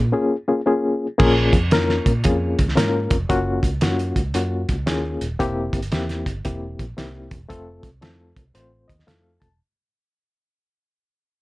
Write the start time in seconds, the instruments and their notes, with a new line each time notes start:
Already playing: fingered electric bass A#2
0.13 reed electric piano A#3 C#4 F4 G#4
0.48 reed electric piano A#3 C#4 F4 G#4
0.66 reed electric piano A#3 C#4 F4 G#4
1.18 fingered electric bass A#1, reed electric piano A#3 C#4 F4 G#4, kick, crash
1.53 fingered electric bass F2, kick, closed hi-hat
1.71 reed electric piano A#3 C#4 F4 A#4, snare, closed hi-hat
1.89 snare
2.06 fingered electric bass A#2, kick, closed hi-hat
2.24 fingered electric bass F2, reed electric piano A#3 C#4 F4 G#4, kick, closed hi-hat
2.59 fingered electric bass C#2, kick, closed hi-hat
2.69 snare
2.76 fingered electric bass G#2, reed electric piano A#3 C#4 F4 A#4, snare, closed hi-hat
3.11 fingered electric bass F1, kick, closed hi-hat
3.29 fingered electric bass F#1, reed electric piano A#3 C#4 F4 F#4, kick, closed hi-hat
3.63 fingered electric bass C#2, kick, closed hi-hat
3.81 fingered electric bass F#2, reed electric piano A#3 C#4 F4 F#4, snare, closed hi-hat
3.99 closed hi-hat
4.16 fingered electric bass C#2, kick, closed hi-hat
4.34 fingered electric bass F#2, reed electric piano A#3 C#4 F4 F#4, closed hi-hat
4.69 fingered electric bass C#2, kick, closed hi-hat
4.86 fingered electric bass D#2, reed electric piano A#3 C#4 F4 G#4, snare, closed hi-hat
5.21 fingered electric bass D#1, closed hi-hat
5.39 fingered electric bass E1, reed electric piano A#3 C4 E4 G4, kick, closed hi-hat
5.73 fingered electric bass G1, kick, closed hi-hat
5.82 closed hi-hat
5.92 fingered electric bass E2, reed electric piano A#3 C4 E4 G4, snare, closed hi-hat
6.09 snare, closed hi-hat
6.26 fingered electric bass G1, kick, closed hi-hat
6.45 fingered electric bass E1, reed electric piano A#3 C4 E4 G4, kick, closed hi-hat
6.79 fingered electric bass A#1, kick, closed hi-hat
6.97 fingered electric bass C2, reed electric piano A#3 C4 E4 G4, snare, closed hi-hat
7.31 fingered electric bass E1, kick, closed hi-hat
7.49 fingered electric bass F1, reed electric piano A3 C4 F4 A4, kick, closed hi-hat
7.83 fingered electric bass C2, kick, closed hi-hat
8.02 fingered electric bass F2, reed electric piano A3 C4 F4 A4, snare, closed hi-hat
8.36 fingered electric bass C2, kick, closed hi-hat
8.54 fingered electric bass A1, reed electric piano A3 C4 F4 C5, closed hi-hat
8.88 fingered electric bass D#2, reed electric piano D#5, kick, closed hi-hat
8.99 snare
9.07 fingered electric bass F2, reed electric piano A3 C4 F4 A4 F5, snare, closed hi-hat
9.40 fingered electric bass E1, reed electric piano A5, kick, closed hi-hat